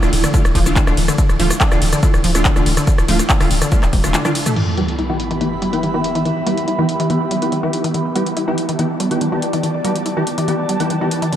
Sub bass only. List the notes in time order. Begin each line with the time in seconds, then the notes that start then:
0.03 D1
0.13 D1
0.45 D1
0.55 D1
0.66 D1
0.87 D1
0.97 D1
1.29 D1
1.40 D1
1.72 D1
1.82 D1
2.14 D1
2.24 D1
2.35 D1
2.56 D1
2.66 D1
2.98 D1
3.09 D1
3.41 D1
3.51 D1
3.83 D1
3.93 D1
4.04 D1